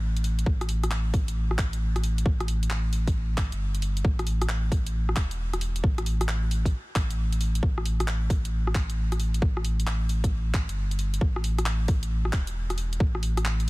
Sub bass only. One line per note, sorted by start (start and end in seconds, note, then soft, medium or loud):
0.00 0.45 A1 loud
0.46 2.24 A1 loud
2.25 3.50 A1 loud
3.52 4.04 G1 medium
4.04 5.15 A1 loud
5.16 5.83 E1 medium
5.84 6.72 A1 loud
6.95 7.62 A1 medium
7.63 9.41 A1 loud
9.42 10.67 A1 loud
10.68 11.20 G1 medium
11.21 12.32 A1 loud
12.33 12.99 E1 medium
13.00 13.70 A1 loud